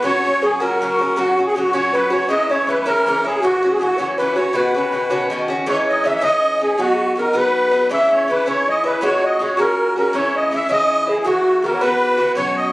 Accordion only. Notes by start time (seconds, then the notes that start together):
0.04 C#5
0.42 G#4
0.60 A#4
1.17 F#4
1.46 G#4
1.56 F#4
1.73 C#5
1.94 B4
2.11 C#5
2.29 D#5
2.51 C#5
2.69 B4
2.80 B4
2.86 A#4
3.26 G#4
3.43 F#4
3.73 G#4
3.82 F#4
3.99 C#5
4.18 B4
4.36 C#5
4.53 B4
5.69 C#5
5.89 D#5
6.06 E5
6.15 E5
6.23 D#5
6.62 G#4
6.80 F#4
7.19 A#4
7.37 B4
7.93 E5
8.13 C#5
8.31 B4
8.48 C#5
8.69 D#5
8.87 B4
9.06 C#5
9.25 D#5
9.43 C#5
9.59 A#4
9.98 A#4
10.14 C#5
10.36 D#5
10.54 E5
10.71 D#5
11.09 G#4
11.19 G#4
11.25 F#4
11.64 A#4
11.80 B4
12.36 C#5
12.57 D#5